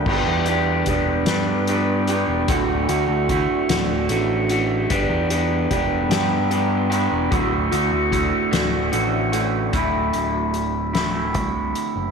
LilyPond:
<<
  \new Staff \with { instrumentName = "Clean electric guitar" } { \time 6/8 \key d \major \tempo 4. = 50 <g b d' g'>8 <g b d' g'>8 <g b d' g'>8 <g b d' g'>8 <g b d' g'>8 <g b d' g'>8 | <a, d a fis'>8 <a, d a fis'>8 <a, d a fis'>8 <a, d a fis'>8 <a, d a fis'>8 <a, d a fis'>8 | <g b d' g'>8 <g b d' g'>8 <g b d' g'>8 <g b d' g'>8 <g b d' g'>8 <g b d' g'>8 | <a, d a fis'>8 <a, d a fis'>8 <a, d a fis'>8 <a, d a fis'>8 <a, d a fis'>8 <a, d a fis'>8 |
<d, a, d a e'>4. <d, a, d a e'>4. | }
  \new Staff \with { instrumentName = "Picked electric bass" } { \clef bass \time 6/8 \key d \major g,,16 e,8. e,,8 g,4~ g,16 e,,16 | d,,8 d,16 d,8 r16 d,,8 a,,4 | g,,16 e,8. e,,8 g,4~ g,16 e,,16 | d,,8 d,16 d,8 r16 d,,8 a,,4 |
d,,8 d,,4. c,8 r16 fis,,16 | }
  \new DrumStaff \with { instrumentName = "Drums" } \drummode { \time 6/8 <cymc bd>8 hh8 <hh bd>8 <hh sn>8 hh8 hh8 | <hh bd>8 hh8 <hh bd>8 <hh sn>8 hh8 hh8 | <hh bd>8 hh8 <hh bd>8 <hh sn>8 hh8 hh8 | <hh bd>8 hh8 <hh bd>8 <hh sn>8 hh8 hh8 |
<hh bd>8 hh8 hh8 <hh sn>8 <hh bd>8 hh8 | }
>>